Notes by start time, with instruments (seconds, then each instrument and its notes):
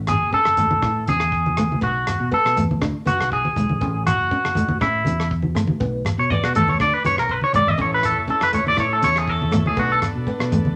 Already playing: fingered electric bass A1
0.07 clean electric guitar G#4, cross-stick, closed hi-hat, low conga
0.21 fingered electric bass F#1
0.32 steel-string acoustic guitar C#4, clean electric guitar A4, kick
0.45 fingered electric bass F#1, cross-stick
0.57 fingered electric bass F#1, steel-string acoustic guitar A3, closed hi-hat, low conga
0.71 high conga
0.82 fingered electric bass A2, steel-string acoustic guitar E4, kick, cross-stick
1.07 fingered electric bass E2, steel-string acoustic guitar C#4, clean electric guitar G#4, closed hi-hat, high conga
1.20 cross-stick
1.32 kick
1.46 high conga
1.57 steel-string acoustic guitar A3, cross-stick, closed hi-hat, low conga
1.72 high conga
1.81 fingered electric bass B1, clean electric guitar F#4, muted steel-string acoustic guitar stroke, kick
2.07 cross-stick, closed hi-hat, low conga
2.20 fingered electric bass B2
2.31 steel-string acoustic guitar B3, clean electric guitar A4, kick
2.45 fingered electric bass B2, cross-stick
2.56 fingered electric bass E2, steel-string acoustic guitar A3, closed hi-hat, low conga
2.71 high conga
2.81 fingered electric bass D2, steel-string acoustic guitar D4, kick, cross-stick
3.05 fingered electric bass F#2, steel-string acoustic guitar B3, clean electric guitar F#4, closed hi-hat, high conga
3.19 fingered electric bass B1, cross-stick
3.32 clean electric guitar G#4, kick
3.45 high conga
3.56 fingered electric bass B1, steel-string acoustic guitar G#3, closed hi-hat, low conga
3.69 fingered electric bass A1, high conga
3.81 fingered electric bass A1, steel-string acoustic guitar C#4, kick
4.07 clean electric guitar F#4, cross-stick, closed hi-hat, low conga
4.19 fingered electric bass F#1
4.31 steel-string acoustic guitar C#4, kick
4.44 fingered electric bass F#1, cross-stick
4.55 fingered electric bass F#1, steel-string acoustic guitar A3, closed hi-hat, low conga
4.69 high conga
4.80 fingered electric bass A2, steel-string acoustic guitar C#4, clean electric guitar E4, kick, cross-stick
5.05 fingered electric bass E2, steel-string acoustic guitar C#4, closed hi-hat, high conga
5.20 cross-stick
5.31 kick
5.42 high conga
5.55 steel-string acoustic guitar A3, cross-stick, closed hi-hat, low conga
5.67 high conga
5.80 fingered electric bass B1, steel-string acoustic guitar B3, kick
6.05 cross-stick, closed hi-hat, low conga
6.18 fingered electric bass B2, clean electric guitar C#5
6.30 steel-string acoustic guitar B3, clean electric guitar D5, kick, low conga
6.43 fingered electric bass B2, clean electric guitar F#4, cross-stick
6.55 fingered electric bass E2, steel-string acoustic guitar A3, clean electric guitar A4, closed hi-hat, low conga
6.68 clean electric guitar C#5, high conga
6.80 fingered electric bass D2, steel-string acoustic guitar D4, clean electric guitar D5, kick, cross-stick
6.93 clean electric guitar B4
7.05 fingered electric bass F#2, steel-string acoustic guitar B3, clean electric guitar C#5, closed hi-hat, high conga
7.17 fingered electric bass B1, clean electric guitar A#4, cross-stick
7.29 clean electric guitar B4, kick
7.41 clean electric guitar C#5, high conga
7.53 fingered electric bass B1, steel-string acoustic guitar G#3, clean electric guitar D5, closed hi-hat, low conga
7.66 fingered electric bass A1, clean electric guitar D#5, low conga
7.78 fingered electric bass A1, steel-string acoustic guitar C#4, transistor combo organ C#4 E4 A4, clean electric guitar C#5, kick
7.94 clean electric guitar B4
8.03 clean electric guitar A4, cross-stick, closed hi-hat, low conga
8.16 fingered electric bass F#1
8.27 steel-string acoustic guitar C#4, clean electric guitar A4, kick
8.41 fingered electric bass F#1, clean electric guitar B4, cross-stick
8.53 fingered electric bass F#1, steel-string acoustic guitar A3, clean electric guitar C#5, closed hi-hat, low conga
8.67 clean electric guitar D5, high conga
8.77 fingered electric bass A2, steel-string acoustic guitar E4, clean electric guitar C#5, kick, cross-stick
8.93 clean electric guitar A4
9.02 fingered electric bass E2, steel-string acoustic guitar C#4, clean electric guitar C#5, closed hi-hat, high conga
9.16 clean electric guitar G#4, cross-stick
9.28 clean electric guitar A4, kick
9.42 high conga
9.51 steel-string acoustic guitar A3, cross-stick, closed hi-hat, low conga
9.66 clean electric guitar G#4, high conga
9.77 fingered electric bass B1, steel-string acoustic guitar B3, transistor combo organ B3 D4, clean electric guitar F#4, kick
9.92 clean electric guitar A4
10.02 cross-stick, closed hi-hat, low conga
10.15 fingered electric bass B2
10.27 steel-string acoustic guitar B3, kick
10.39 fingered electric bass B2, cross-stick
10.51 fingered electric bass E2, steel-string acoustic guitar A3, closed hi-hat, low conga
10.65 high conga